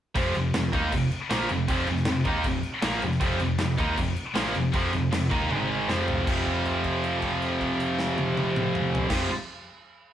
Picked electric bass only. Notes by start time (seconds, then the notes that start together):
0.16 F1
0.35 F1
0.54 F1
0.73 D#2
0.92 F1
1.30 A#1
1.50 F1
1.69 F1
1.88 F1
2.08 F1
2.26 D#2
2.44 F1
2.83 A#1
3.02 F1
3.21 F1
3.41 F1
3.60 F1
3.78 D#2
3.97 F1
4.36 A#1
4.55 F1
4.74 F1
4.93 F1
5.12 F1
5.31 D#2
5.50 G#1
5.89 F1
6.28 F1
9.10 F1